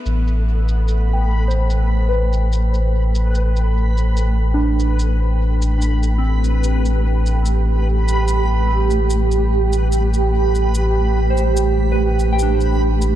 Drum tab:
SH |xx-xx--xx--xxx-x|xx-xx--xx--xxx-x|xx-xx--xx--xxx-x|xx-xx--xx--xxx-x|